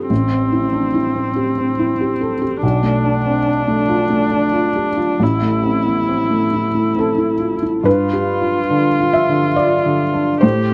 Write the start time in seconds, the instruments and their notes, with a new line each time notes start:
Already playing: felt piano B3 E4 F4 G4 A4
0.09 felt piano A1, viola C4
0.31 felt piano C4
0.52 felt piano E4
0.73 felt piano D4
0.94 felt piano E4
1.16 felt piano C4
1.36 felt piano G4
1.58 felt piano C4
1.79 felt piano E4
2.01 felt piano G4
2.21 felt piano A4
2.42 felt piano G4
2.63 felt piano B1, viola D4
2.83 felt piano A3
3.05 felt piano D4
3.26 felt piano C4
3.46 felt piano D4
3.68 felt piano A3
3.89 felt piano F4
4.10 felt piano A3
4.31 felt piano D4
4.53 felt piano F4
4.76 felt piano G4
4.97 felt piano F4
5.20 felt piano A1, viola E4
5.42 felt piano A3
5.63 felt piano C4
5.86 felt piano B3
6.09 felt piano C4
6.30 felt piano A3
6.53 felt piano E4
6.74 felt piano A3
6.96 felt piano C4 A4
7.18 felt piano E4
7.40 felt piano F4
7.62 felt piano E4
7.84 felt piano G2 B4, viola F4
8.13 felt piano G4
8.41 felt piano F4
8.70 felt piano D3
9.00 felt piano F4
9.13 felt piano E5
9.29 felt piano D3
9.56 felt piano F4 D5
9.85 felt piano D3
10.14 felt piano D4
10.41 felt piano A2 C5, viola G4